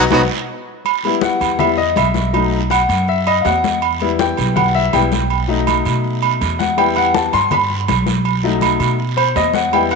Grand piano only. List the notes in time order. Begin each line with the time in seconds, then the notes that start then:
0.11 B3 D#4 F#4
1.05 G3 B3 E4
1.22 F#5
1.59 G3 B3 E4 E5
1.78 D#5
1.98 E5
2.33 F#3 A3 D#4
2.71 F#5
3.09 E5
3.27 D#5
3.41 F5
3.46 F#5
4.02 G3 B3 E4
4.19 G5
4.56 F#5
4.75 E5
4.93 G3 B3 E4 G5
5.48 F#3 A3 D#4
6.59 F#5
6.77 G3 B3 E4 G5
6.97 F#5
7.14 A5
7.34 C6
7.53 B5
8.44 F#3 A3 D#4
9.17 C5
9.37 D#5
9.54 F#5
9.73 G3 B3 E4 G5
9.91 F#5